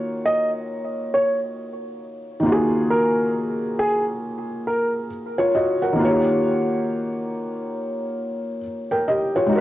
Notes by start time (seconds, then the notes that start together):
Already playing: D#3 A#3 F4 F#4 C#5
0.26 D#5
1.14 C#5
2.40 D#3 A#3
2.46 F4 F#4
2.52 G#4
2.90 A#4
3.79 G#4
4.67 A#4
5.38 F4 C#5
5.55 F#4 D#5
5.82 A#4 F#5
5.93 D#3 A#3
5.99 F4 F#4
6.05 G4 C#5
8.91 A#4 G5
9.08 G4 D#5
9.36 F4 C#5
9.46 G#3 D#4
9.52 F#4 A#4